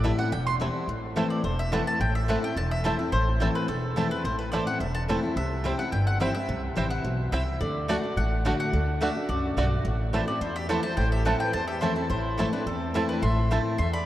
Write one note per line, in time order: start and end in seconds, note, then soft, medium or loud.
0.00 0.10 A1 loud
0.00 0.29 A2 loud
0.00 0.18 E3 medium
0.00 0.18 E5 medium
0.04 0.18 G3 medium
0.04 0.11 A3 medium
0.04 0.18 C4 medium
0.04 0.07 E4 medium
0.04 0.18 E4 medium
0.18 0.33 C4 medium
0.18 0.32 E4 medium
0.18 0.32 F#5 loud
0.32 0.67 E1 medium
0.32 0.86 E2 loud
0.32 0.46 G5 loud
0.47 0.55 C6 loud
0.60 0.87 E3 loud
0.60 0.87 G3 medium
0.60 0.67 A3 medium
0.60 0.87 C4 loud
0.60 0.64 E4 medium
0.60 0.88 E4 loud
0.88 1.23 A1 medium
0.88 1.42 A2 medium
1.16 1.43 E3 medium
1.16 1.26 A3 medium
1.16 1.43 A3 medium
1.16 1.23 A3 medium
1.16 1.43 C4 medium
1.16 1.26 E4 medium
1.16 1.19 E4 medium
1.16 1.44 E4 medium
1.16 1.26 C5 medium
1.16 1.26 A5 loud
1.30 1.44 D5 medium
1.44 1.79 E1 medium
1.44 1.98 E2 medium
1.44 1.58 C5 medium
1.59 1.72 E5 medium
1.72 1.99 E3 medium
1.72 1.81 A3 medium
1.72 1.99 A3 medium
1.72 1.79 A3 medium
1.72 2.00 C4 medium
1.72 1.82 E4 medium
1.72 1.75 E4 medium
1.72 2.00 E4 loud
1.72 1.82 C5 medium
1.72 1.87 F#5 medium
1.72 1.82 A5 medium
1.87 2.00 A5 loud
2.00 2.35 A1 loud
2.00 2.54 A2 loud
2.00 2.15 G5 medium
2.15 2.28 E5 medium
2.28 2.42 E3 medium
2.28 2.38 A3 medium
2.28 2.43 A3 medium
2.28 2.36 A3 medium
2.28 2.43 C4 medium
2.28 2.38 E4 medium
2.28 2.41 E4 loud
2.28 2.32 E4 medium
2.28 2.38 C5 medium
2.28 2.43 F#5 medium
2.28 2.38 A5 medium
2.43 2.57 C4 soft
2.43 2.56 E4 medium
2.43 2.57 G5 medium
2.56 2.91 E1 medium
2.56 3.10 E2 medium
2.56 2.71 A5 loud
2.71 2.84 E5 medium
2.84 2.98 E3 medium
2.84 2.94 A3 medium
2.84 2.99 A3 medium
2.84 2.92 A3 medium
2.84 2.99 C4 medium
2.84 2.94 E4 medium
2.84 2.97 E4 medium
2.84 2.88 E4 medium
2.84 2.94 C5 loud
2.84 2.99 C5 medium
2.84 2.94 A5 medium
2.98 3.13 C4 medium
2.98 3.12 E4 medium
2.98 3.12 A4 medium
3.12 3.47 A1 medium
3.12 3.66 A2 medium
3.12 3.52 C5 loud
3.40 3.67 E3 medium
3.40 3.50 A3 medium
3.40 3.67 A3 medium
3.40 3.48 A3 medium
3.40 3.68 C4 medium
3.40 3.50 E4 medium
3.40 3.68 E4 medium
3.40 3.44 E4 medium
3.40 3.50 C5 medium
3.40 3.50 A5 loud
3.55 3.68 B4 medium
3.68 4.03 E1 medium
3.68 4.22 E2 loud
3.68 4.08 A4 medium
3.96 4.10 E3 medium
3.96 4.06 A3 medium
3.96 4.11 A3 medium
3.96 4.04 A3 medium
3.96 4.11 C4 medium
3.96 4.06 E4 medium
3.96 4.10 E4 medium
3.96 4.00 E4 medium
3.96 4.06 C5 loud
3.96 4.06 A5 loud
4.11 4.25 C4 soft
4.11 4.24 E4 medium
4.11 4.24 B4 medium
4.24 4.59 A1 medium
4.24 4.78 A2 medium
4.24 4.38 C5 medium
4.39 4.51 B4 medium
4.52 4.67 E3 medium
4.52 4.62 A3 medium
4.52 4.67 A3 medium
4.52 4.60 A3 medium
4.52 4.67 C4 medium
4.52 4.62 E4 medium
4.52 4.56 E4 medium
4.52 4.66 E4 medium
4.52 4.63 C5 medium
4.52 4.66 D5 medium
4.52 4.63 A5 medium
4.67 4.81 C4 soft
4.67 4.80 E4 medium
4.67 4.80 F#5 medium
4.80 5.15 E1 medium
4.80 5.34 E2 medium
4.80 4.94 E5 medium
4.95 5.03 A5 loud
5.08 5.23 E3 medium
5.08 5.18 A3 medium
5.08 5.23 A3 medium
5.08 5.16 A3 medium
5.08 5.23 C4 medium
5.08 5.18 E4 medium
5.08 5.12 E4 medium
5.08 5.22 E4 medium
5.08 5.19 C5 loud
5.08 5.19 A5 medium
5.23 5.37 C4 medium
5.23 5.36 E4 medium
5.36 5.71 C2 medium
5.36 5.90 C3 medium
5.36 5.76 E5 medium
5.64 5.78 E3 medium
5.64 5.79 G3 medium
5.64 5.74 C4 medium
5.64 5.79 C4 medium
5.64 5.72 C4 medium
5.64 5.74 E4 medium
5.64 5.68 E4 medium
5.64 5.78 E4 medium
5.64 5.74 C5 medium
5.64 5.74 G5 loud
5.79 5.93 C4 soft
5.79 5.92 E4 medium
5.79 5.92 F#5 medium
5.92 6.27 G1 medium
5.92 6.46 G2 medium
5.92 6.06 G5 medium
6.07 6.20 F#5 medium
6.20 6.34 E3 medium
6.20 6.35 G3 medium
6.20 6.30 C4 medium
6.20 6.35 C4 medium
6.20 6.28 C4 medium
6.20 6.30 E4 loud
6.20 6.24 E4 medium
6.20 6.34 E4 medium
6.20 6.30 C5 medium
6.20 6.33 E5 medium
6.20 6.31 G5 loud
6.34 6.49 C4 soft
6.34 6.48 E4 medium
6.34 6.61 E5 medium
6.48 6.66 C2 loud
6.48 7.02 C3 medium
6.76 7.01 A1 medium
6.76 7.03 E3 medium
6.76 7.03 G3 medium
6.76 6.86 C4 medium
6.76 7.04 C4 medium
6.76 6.84 C4 medium
6.76 6.86 E4 medium
6.76 7.04 E4 loud
6.76 6.80 E4 medium
6.76 6.86 C5 medium
6.76 6.87 G5 medium
6.90 7.30 F#5 medium
7.04 7.28 B1 medium
7.04 7.31 B2 medium
7.32 7.56 C2 medium
7.32 7.60 C3 medium
7.32 7.42 C4 medium
7.32 7.40 C4 medium
7.32 7.42 E4 medium
7.32 7.36 E4 medium
7.32 7.43 C5 medium
7.32 7.59 E5 medium
7.32 7.43 G5 loud
7.61 7.95 D2 loud
7.61 7.87 D3 loud
7.61 7.87 D5 medium
7.88 8.03 D3 medium
7.88 7.98 A3 medium
7.88 7.96 A3 medium
7.88 8.03 A3 medium
7.88 7.96 D4 medium
7.88 8.04 D4 medium
7.88 7.98 F#4 medium
7.88 7.96 F#4 medium
7.88 8.02 F#4 loud
7.88 8.15 D5 medium
7.88 7.99 D5 medium
7.88 7.99 F#5 loud
8.03 8.17 D4 soft
8.03 8.16 F#4 medium
8.16 8.51 A1 medium
8.16 8.71 A2 medium
8.16 8.43 F#5 medium
8.45 8.72 D3 medium
8.45 8.54 A3 loud
8.45 8.52 A3 medium
8.45 8.72 A3 medium
8.45 8.72 D4 medium
8.45 8.52 D4 medium
8.45 8.55 F#4 loud
8.45 8.52 F#4 medium
8.45 8.73 F#4 medium
8.45 8.55 D5 medium
8.45 8.55 F#5 loud
8.60 8.98 F#5 loud
8.73 9.08 D2 medium
8.73 8.99 D3 medium
9.01 9.15 D3 medium
9.01 9.10 A3 medium
9.01 9.15 A3 medium
9.01 9.08 A3 medium
9.01 9.16 D4 medium
9.01 9.08 D4 medium
9.01 9.11 F#4 medium
9.01 9.14 F#4 medium
9.01 9.08 F#4 medium
9.01 9.11 D5 medium
9.01 9.28 E5 medium
9.01 9.11 F#5 medium
9.15 9.29 D4 soft
9.15 9.28 F#4 medium
9.29 9.53 C2 medium
9.29 9.56 F#2 medium
9.29 9.55 F#4 medium
9.29 9.55 D5 medium
9.57 9.81 B1 medium
9.57 9.84 G2 medium
9.57 9.66 A3 medium
9.57 9.64 A3 medium
9.57 9.64 D4 medium
9.57 9.84 F#4 medium
9.57 9.67 F#4 loud
9.57 9.64 F#4 medium
9.57 9.67 D5 loud
9.57 9.84 D5 medium
9.57 9.67 F#5 medium
9.85 10.20 A1 medium
9.85 10.39 A2 medium
10.13 10.27 E3 medium
10.13 10.23 A3 medium
10.13 10.28 A3 medium
10.13 10.20 A3 medium
10.13 10.28 C4 medium
10.13 10.23 E4 medium
10.13 10.16 E4 medium
10.13 10.26 E4 medium
10.13 10.23 C5 medium
10.13 10.23 A5 medium
10.27 10.42 C4 medium
10.27 10.41 E4 medium
10.27 10.41 F#4 medium
10.27 10.41 D5 medium
10.41 10.76 E2 medium
10.41 10.95 E2 medium
10.41 10.55 E4 medium
10.41 10.55 C5 medium
10.56 10.69 G4 medium
10.56 10.69 E5 loud
10.69 10.83 E3 medium
10.69 10.79 A3 medium
10.69 10.84 A3 medium
10.69 10.76 A3 medium
10.69 10.84 C4 medium
10.69 10.79 E4 loud
10.69 10.72 E4 medium
10.69 10.82 E4 medium
10.69 10.83 A4 medium
10.69 10.79 C5 loud
10.69 10.83 F#5 medium
10.69 10.79 A5 loud
10.83 10.98 C4 soft
10.83 10.97 E4 medium
10.83 10.97 C5 medium
10.83 10.96 A5 loud
10.97 11.32 A1 medium
10.97 11.51 A2 medium
10.97 11.11 C5 medium
10.97 11.11 G5 medium
11.12 11.25 G4 medium
11.12 11.25 E5 medium
11.25 11.52 E3 medium
11.25 11.35 A3 medium
11.25 11.53 A3 medium
11.25 11.33 A3 medium
11.25 11.53 C4 medium
11.25 11.35 E4 medium
11.25 11.53 E4 medium
11.25 11.29 E4 medium
11.25 11.40 A4 medium
11.25 11.35 C5 medium
11.25 11.40 F#5 medium
11.25 11.36 A5 loud
11.40 11.53 B4 medium
11.40 11.53 G5 medium
11.53 12.07 E2 loud
11.53 11.89 E2 medium
11.53 11.68 C5 medium
11.53 11.67 A5 loud
11.68 11.81 G4 medium
11.68 11.81 E5 medium
11.81 11.96 E3 medium
11.81 11.91 A3 medium
11.81 11.89 A3 medium
11.81 11.96 A3 medium
11.81 11.97 C4 medium
11.81 11.91 E4 medium
11.81 11.96 E4 medium
11.81 11.85 E4 medium
11.81 11.96 E4 loud
11.81 11.95 C5 medium
11.81 11.92 C5 medium
11.81 11.92 A5 loud
11.96 12.09 C4 medium
11.96 12.11 C4 medium
11.96 12.10 E4 medium
11.96 12.09 A4 medium
12.10 12.45 A1 loud
12.10 12.64 A2 loud
12.10 12.50 E4 medium
12.10 12.50 C5 medium
12.38 12.52 E3 medium
12.38 12.47 A3 medium
12.38 12.53 A3 medium
12.38 12.45 A3 medium
12.38 12.53 C4 medium
12.38 12.48 E4 medium
12.38 12.42 E4 medium
12.38 12.51 E4 medium
12.38 12.48 C5 medium
12.38 12.48 A5 loud
12.53 12.67 C4 soft
12.53 12.65 D4 medium
12.53 12.66 E4 medium
12.53 12.66 B4 medium
12.66 13.01 E2 medium
12.66 13.20 E2 loud
12.66 13.06 C4 medium
12.66 13.06 A4 medium
12.94 13.21 E3 medium
12.94 13.04 A3 medium
12.94 13.22 A3 medium
12.94 13.01 A3 medium
12.94 13.22 C4 medium
12.94 13.04 E4 medium
12.94 12.98 E4 medium
12.94 13.22 E4 loud
12.94 13.04 C5 medium
12.94 13.05 A5 loud
13.09 13.22 D4 medium
13.09 13.22 B4 medium
13.22 13.57 A1 loud
13.22 13.76 A2 loud
13.22 13.49 E5 medium
13.22 13.49 C6 medium
13.51 13.78 E3 medium
13.51 13.60 A3 medium
13.51 13.78 A3 medium
13.51 13.58 A3 medium
13.51 13.78 C4 medium
13.51 13.60 E4 medium
13.51 13.54 E4 medium
13.51 13.79 E4 medium
13.51 13.61 C5 loud
13.51 13.61 A5 loud
13.78 14.06 E2 medium
13.78 13.93 E5 medium
13.78 13.93 C6 medium
13.93 14.06 D5 medium
13.93 14.06 B5 loud